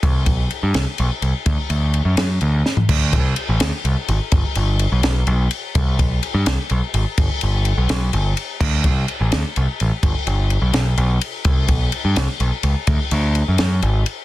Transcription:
<<
  \new Staff \with { instrumentName = "Picked electric bass" } { \clef bass \time 6/8 \key g \major \tempo 4. = 84 c,8 b,,8 r16 g,16 c,16 r16 b,,16 r16 c,16 r16 | d,16 r16 d,8. fis,16 fis,8 d,8 r8 | d,8 c,8 r16 a,,16 d,16 r16 c,16 r16 aes,,16 r16 | g,,16 r16 g,,8. b,,16 b,,8 b,,8 r8 |
c,8 b,,8 r16 g,16 c,16 r16 b,,16 r16 aes,,16 r16 | g,,16 r16 g,,8. b,,16 b,,8 g,,8 r8 | d,8 c,8 r16 a,,16 d,16 r16 c,16 r16 a,,16 r16 | g,,16 r16 g,,8. b,,16 b,,8 b,,8 r8 |
c,8 b,,8 r16 g,16 c,16 r16 b,,16 r16 cis,16 r16 | d,16 r16 d,8. fis,16 fis,8 aes,,8 r8 | }
  \new DrumStaff \with { instrumentName = "Drums" } \drummode { \time 6/8 <bd cymr>8 <bd cymr>8 cymr8 <cymr sn>8 cymr8 cymr8 | <bd cymr>8 cymr8 cymr8 <cymr sn>8 cymr8 sn16 tomfh16 | <cymc bd>8 <bd cymr>8 cymr8 <cymr sn>8 cymr8 cymr8 | <bd cymr>8 cymr8 cymr8 <cymr sn>8 cymr8 cymr8 |
<bd cymr>8 <bd cymr>8 cymr8 <cymr sn>8 cymr8 cymr8 | <bd cymr>8 cymr8 cymr8 <cymr sn>8 cymr8 cymr8 | <cymc bd>8 <bd cymr>8 cymr8 <cymr sn>8 cymr8 cymr8 | <bd cymr>8 cymr8 cymr8 <cymr sn>8 cymr8 cymr8 |
<bd cymr>8 <bd cymr>8 cymr8 <cymr sn>8 cymr8 cymr8 | <bd cymr>8 cymr8 cymr8 <cymr sn>8 cymr8 cymr8 | }
>>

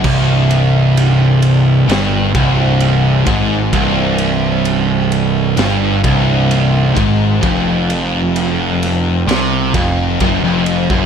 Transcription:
<<
  \new Staff \with { instrumentName = "Distorted electric guitar" } { \clef bass \time 4/4 \key f \minor \tempo 4 = 65 c,2 g,8 c,4 aes,8 | c,2 g,8 c,4 aes,8 | f,2 c8 f,8 fis,16 f,8 fis,16 | }
  \new Staff \with { instrumentName = "Distorted electric guitar" } { \clef bass \time 4/4 \key f \minor c,2 g,8 c,4 aes,8 | c,2 g,8 c,4 aes,8 | f,2 c8 f,8 fis,16 f,8 fis,16 | }
  \new Staff \with { instrumentName = "Overdriven electric guitar" } { \clef bass \time 4/4 \key f \minor c,2 g,8 c,4 aes,8 | c,2 g,8 c,4 aes,8 | f,2 c8 f,8 fis,16 f,8 fis,16 | }
  \new Staff \with { instrumentName = "Picked electric bass" } { \clef bass \time 4/4 \key f \minor c,,2 g,,8 c,,4 aes,,8 | c,,2 g,,8 c,,4 aes,,8 | f,,2 c,8 f,,8 fis,,16 f,,8 fis,,16 | }
  \new DrumStaff \with { instrumentName = "Drums" } \drummode { \time 4/4 <cymc bd>8 cymr8 cymr8 cymr8 <cymr sn>8 <bd cymr>8 cymr8 <bd cymr>8 | <bd cymr>8 cymr8 cymr8 cymr8 <cymr sn>8 <bd cymr>8 cymr8 <bd cymr>8 | <bd cymr>8 cymr8 cymr8 <cymr sn>8 <cymr sn>8 <bd cymr>8 <bd cymr>8 cymr16 bd16 | }
>>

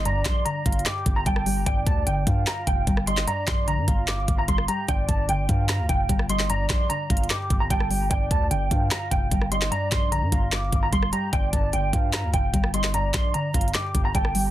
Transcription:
<<
  \new Staff \with { instrumentName = "Clean electric guitar" } { \time 4/4 \key g \minor \tempo 4 = 149 bes''8 c'''8 bes''4 d'''8. bes''16 g''4 | g''8 a''8 g''4 bes''8 g''4 c'''8 | bes''8 c'''8 bes''4 d'''8. bes''16 c'''8 bes''8 | g''8 a''8 g''4 bes''8 g''4 c'''8 |
bes''8 c'''8 bes''4 d'''8. bes''16 g''4 | g''8 a''8 g''4 bes''8 g''4 c'''8 | bes''8 c'''8 bes''4 d'''8. bes''16 c'''8 bes''8 | g''8 a''8 g''4 bes''8 g''4 c'''8 |
bes''8 c'''8 bes''4 d'''8. bes''16 g''4 | }
  \new Staff \with { instrumentName = "Soft synth lead" } { \time 4/4 \key g \minor d''4. f''8 r4 a''8 g''8 | d''4. f''2 ees''8 | d''4. f''2 g''8 | d''4. f''2 ees''8 |
d''4. f''8 r4 a''8 g''8 | d''4. f''2 ees''8 | d''4. f''2 g''8 | d''4. f''2 ees''8 |
d''4. f''8 r4 a''8 g''8 | }
  \new Staff \with { instrumentName = "Synth pluck" } { \clef bass \time 4/4 \key g \minor <g, g>8 g,8 d8 g,8 g,8 g,8 g8 g8 | g,8 g,8 d8 g,8 g,8 g,8 g8 g8 | g,8 g,8 d8 g,8 g,8 g,8 g8 g8 | g,8 g,8 d8 g,8 g,8 g,8 g8 g8 |
g,8 g,8 d8 g,8 g,8 g,8 g8 g8 | g,8 g,8 d8 g,8 g,8 g,8 g8 g8 | g,8 g,8 d8 g,8 g,8 g,8 g8 g8 | g,8 g,8 d8 g,8 g,8 g,8 g8 g8 |
g,8 g,8 d8 g,8 g,8 g,8 g8 g8 | }
  \new Staff \with { instrumentName = "808-style bass" } { \clef bass \time 4/4 \key g \minor g,,8 bes,,8 r8 g,,8 r8 g,,8 g,,4 | g,,8 d,8 g,,8 g,8 r8 f,,8 g,,4 | r8 bes,,8. g,16 g,,4 g,,8 g,,8 r8 | g,,8 g,,8 g,,8 g,8. d,16 f,,8 g,,4~ |
g,,8 bes,,8 r8 g,,8 r8 g,,8 g,,4 | g,,8 d,8 g,,8 g,8 r8 f,,8 g,,4 | r8 bes,,8. g,16 g,,4 g,,8 g,,8 r8 | g,,8 g,,8 g,,8 g,8. d,16 f,,8 g,,4~ |
g,,8 bes,,8 r8 g,,8 r8 g,,8 g,,4 | }
  \new DrumStaff \with { instrumentName = "Drums" } \drummode { \time 4/4 hh8 <hc hh bd sn>8 \tuplet 3/2 { hh16 r16 r16 <hh bd>16 hh16 hh16 } <hc hh ss sn>8 <hh bd>8 <hh bd>16 ss16 hho8 | <hh bd>8 <hh bd>8 hh8 <hh bd>8 <hc hh ss sn>8 <hh bd>8 <hh bd>16 ss16 hh16 <hc sn>16 | hh8 <hc hh bd sn>8 hh8 <hh bd>8 <hc hh ss sn>8 <hh bd>8 <hh bd>16 ss16 hh8 | <hh bd>8 <hh bd>8 hh8 <hh bd>8 <hc hh ss sn>8 <hh bd>8 <hh bd>16 ss16 hh16 <hc sn>16 |
hh8 <hc hh bd sn>8 \tuplet 3/2 { hh16 r16 r16 <hh bd>16 hh16 hh16 } <hc hh ss sn>8 <hh bd>8 <hh bd>16 ss16 hho8 | <hh bd>8 <hh bd>8 hh8 <hh bd>8 <hc hh ss sn>8 <hh bd>8 <hh bd>16 ss16 hh16 <hc sn>16 | hh8 <hc hh bd sn>8 hh8 <hh bd>8 <hc hh ss sn>8 <hh bd>8 <hh bd>16 ss16 hh8 | <hh bd>8 <hh bd>8 hh8 <hh bd>8 <hc hh ss sn>8 <hh bd>8 <hh bd>16 ss16 hh16 <hc sn>16 |
hh8 <hc hh bd sn>8 \tuplet 3/2 { hh16 r16 r16 <hh bd>16 hh16 hh16 } <hc hh ss sn>8 <hh bd>8 <hh bd>16 ss16 hho8 | }
>>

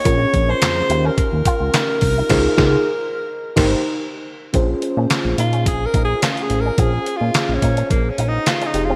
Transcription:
<<
  \new Staff \with { instrumentName = "FM electric piano" } { \time 4/4 \key bes \dorian \tempo 4 = 107 <des' f' aes' bes'>4. <des' f' g' bes'>2~ <des' f' g' bes'>8 | <ees' f' aes' c''>8 <ees' f' aes' c''>8 r4 r16 <ees' g' bes' c''>8 r4 r16 | <des' f' aes' c''>1 | <des' f' aes' c''>2.~ <des' f' aes' c''>8 <ees' g' aes' c''>8 | }
  \new Staff \with { instrumentName = "Alto saxophone" } { \time 4/4 \key bes \dorian des''8. c''4 bes'16 bes'2~ | bes'2. r4 | r4. f'8 \tuplet 3/2 { aes'8 bes'8 aes'8 f'8 aes'8 bes'8 } | \tuplet 3/2 { aes'4 f'8~ f'8 des'4 bes8 des'8 ees'8 f'8 ees'8 f'8 } | }
  \new Staff \with { instrumentName = "Clean electric guitar" } { \time 4/4 \key bes \dorian bes16 r8 des'16 r8 ees'16 des'16 r8 f'16 r16 ees'16 r8 ees'16 | r1 | bes16 r8 des'16 r8 ees'16 des'16 r8 ees'16 r16 des'16 r8 des'16 | bes16 r8 des'16 r8 ees'16 des'16 r8 ees'16 r8 des'16 r16 c'16 | }
  \new Staff \with { instrumentName = "Analog synth bass" } { \clef bass \time 4/4 \key bes \dorian bes,,8 bes,,8 f,8 ees,8 r16 ees,16 r16 des,16 r8 c,8 | des,8 des,8 r4 r16 aes,,8 r4 r16 | bes,,8 r16 bes,16 r16 bes,,16 bes,8 bes,,8 bes,,8 r8 a,,8 | bes,,8 r16 bes,16 r16 bes,,16 bes,8 bes,,8 bes,,8 r8 f,,8 | }
  \new DrumStaff \with { instrumentName = "Drums" } \drummode { \time 4/4 <hh bd>8 <hh bd>8 <hc hh sn>8 hh8 <hh bd>8 <hh bd>8 <hc hh sn>8 <hho bd>8 | <cymc bd sn>8 <bd sn>8 r4 r16 <cymc bd sn>8. r4 | <hh bd>8 hh8 <hc hh sn>8 hh16 hh16 <hh bd>8 <hh bd>8 <hc hh sn>16 hh16 hh8 | <hh bd>8 hh8 <hc hh sn>8 <hh bd>16 hh16 <hh bd>8 hh8 <hc hh sn>16 hh16 hh8 | }
>>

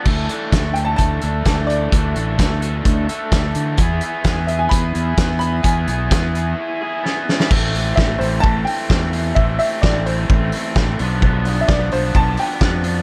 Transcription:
<<
  \new Staff \with { instrumentName = "Upright piano" } { \time 4/4 \key a \minor \tempo 4 = 129 r4. g''16 a''16 a''4. d''8~ | d''8 r2. r8 | r4. e''16 gis''16 b''4. b''8 | gis''2. r4 |
r4 e''8 c''8 a''8 g''4 r8 | e''8 e''8 d''8 c''2 r8 | r8. r32 e''32 d''8 c''8 a''8 g''4 r8 | }
  \new Staff \with { instrumentName = "Overdriven electric guitar" } { \time 4/4 \key a \minor <e a d' a'>8 <a d' a'>8 <e a d' a'>8 <a d' a'>4 <a d' a'>8 <e a d' a'>4 | <e a d' a'>8 <a d' a'>8 <e a d' a'>8 <a d' a'>4 <a d' a'>8 <e a d' a'>4 | <b e' gis'>8 <e' gis'>8 <b e' gis'>8 <e' gis'>4 <e' gis'>8 <b e' gis'>4 | <b e' gis'>8 <e' gis'>8 <b e' gis'>8 <e' gis'>4 <e' gis'>8 <b e' gis'>4 |
<e a c'>8 <a c'>8 <e a c'>8 <a c'>8 <e a c'>8 <a c'>8 <e a c'>8 <a c'>8 | <e a c'>8 <a c'>8 <e a c'>8 <a c'>8 <e a c'>8 <a c'>8 <e a c'>8 <f b d'>8 | <f b d'>8 <b d'>8 <f b d'>8 <b d'>8 <f b d'>8 <b d'>8 <f b d'>8 <b d'>8 | }
  \new Staff \with { instrumentName = "Fingered electric bass" } { \clef bass \time 4/4 \key a \minor d,8 r8 d,4 d,8 d,8 d,4 | d,8 a,,8 d,4 d,8 r8 d,8 d8 | e,8 r8 e,4 e,8 e,8 e,4 | e,8 b,,8 e,4 r2 |
a,,4 a,,8 a,,8 a,,8 r8 e,4 | a,,8 r8 a,,4 a,,8 r8 a,,8 b,,8~ | b,,4 b,,8 b,,8 b,,8 r8 f,4 | }
  \new DrumStaff \with { instrumentName = "Drums" } \drummode { \time 4/4 <cymc bd>8 hh8 <hh bd sn>8 hh8 <hh bd>8 hh8 <hh bd sn>8 hh8 | <hh bd>8 hh8 <hh bd sn>8 hh8 <hh bd>8 hh8 <hh bd sn>8 hh8 | <hh bd>8 hh8 <hh bd sn>8 hh8 <hh bd>8 hh8 <hh bd sn>8 hh8 | <hh bd>8 hh8 <hh bd sn>8 hh8 r4 sn8 sn16 sn16 |
<cymc bd>8 hho8 <bd sn>8 hho8 bd8 hho8 <bd sn>8 hho8 | bd8 hho8 <bd sn>8 hho8 bd8 hho8 <bd sn>8 hho8 | bd8 hho8 <bd sn>8 hho8 bd8 hho8 <bd sn>8 hho8 | }
>>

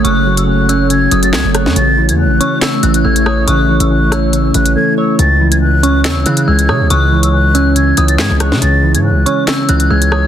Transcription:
<<
  \new Staff \with { instrumentName = "Flute" } { \time 4/4 \key cis \minor \tempo 4 = 140 fis'''8. e'''16 fis'''4 gis'''8. a'''16 gis'''8 fis'''8 | a'''8. gis'''16 fis'''4 e'''8. fis'''16 gis'''4 | fis'''8. e'''16 fis'''4 e'''8 fis'''8 gis'''8 e'''8 | a'''8. gis'''16 fis'''4 e'''8. fis'''16 gis'''4 |
fis'''8. e'''16 fis'''4 gis'''8. a'''16 gis'''8 fis'''8 | a'''8. gis'''16 fis'''4 e'''8. fis'''16 gis'''4 | }
  \new Staff \with { instrumentName = "Synth bell" } { \time 4/4 \key cis \minor cis'''4. e'''4 dis'''8 r4 | r4. cis'''8 e'''8 fis'''8 e'''8 dis'''8 | cis'''4. e'''8 r2 | r4. cis'''8 e'''8 fis'''8 e'''8 dis'''8 |
cis'''4. e'''4 dis'''8 r4 | r4. cis'''8 e'''8 fis'''8 e'''8 dis'''8 | }
  \new Staff \with { instrumentName = "Ambient pad" } { \time 4/4 \key cis \minor << { <fis' cis''>1 | <e' cis''>1~ | <e' cis''>1 | r1 |
r1 | r1 | } \\ { <a cis'>1~ | <a cis'>1~ | <a cis'>1 | r1 |
r1 | r1 | } >> }
  \new Staff \with { instrumentName = "Synth keys" } { \clef bass \time 4/4 \key cis \minor <cis fis a cis''>8 fis8 cis8 cis'8 cis8 fis8 a8 cis''8 | cis8 e8 cis8 cis'8 cis8 e8 a8 cis''8 | cis8 e8 cis8 cis'8 cis8 e8 a8 cis''8 | cis8 e8 cis8 cis'8 cis8 e8 gis8 cis''8 |
cis8 e8 cis8 cis'8 cis8 e8 gis8 cis''8 | cis8 e8 cis8 cis'8 cis8 e8 gis8 cis''8 | }
  \new Staff \with { instrumentName = "808-style bass" } { \clef bass \time 4/4 \key cis \minor fis,,2~ fis,,8 fis,,8 cis,16 fis,,8 fis,16 | a,,8. e,16. a,,16. r4 a,,8 a,,4 | a,,8. a,,4.~ a,,16 a,,8 r4 | cis,2 e,16 cis,16 cis8 cis,8 cis16 cis,16 |
cis,2~ cis,8 cis,8 gis,16 cis,8 cis16 | cis,8. gis,16. cis,16. r4 cis,8 cis,4 | }
  \new DrumStaff \with { instrumentName = "Drums" } \drummode { \time 4/4 hh8. hh16 r8 hh8 hh8 hh16 hh16 <hc sn>8 <hh ss>16 sn16 | hh8. hh16 r8 hh8 <hc hh sn>8 hh16 hh16 r16 hh16 ss8 | hh8. hh16 r8 <hh ss>8 hh8 hh16 hh16 r4 | hh8. hh16 r8 hh8 <hc hh sn>8 hh16 hh16 r16 hh16 ss8 |
hh8. hh16 r8 hh8 hh8 hh16 hh16 <hc sn>8 <hh ss>16 sn16 | hh8. hh16 r8 hh8 <hc hh sn>8 hh16 hh16 r16 hh16 ss8 | }
>>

